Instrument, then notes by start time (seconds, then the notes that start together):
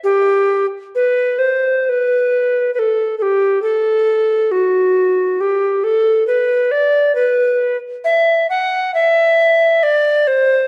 recorder
0.04 G4
0.95 B4
1.39 C5
1.84 C5
1.89 B4
2.74 B4
2.79 A4
3.18 A4
3.22 G4
3.62 A4
4.52 F#4
5.41 G4
5.84 A4
6.27 B4
6.71 D5
7.15 B4
8.04 E5
8.50 F#5
8.94 E5
9.83 D5
10.27 C5